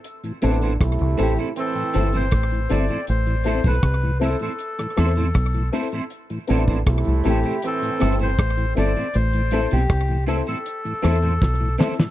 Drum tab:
HH |xxxxxxxxxxxxxxxx|xxxxxxxxxxxxxxox|xxxxxxxxxxxxxxxx|xxxxxxxxxxxx----|
SD |----r-------r---|----r----rr-r---|----r-----r-r---|----r-----r-o-oo|
BD |----o-------o---|---oo-------o---|---oo-------o---|----o-------o---|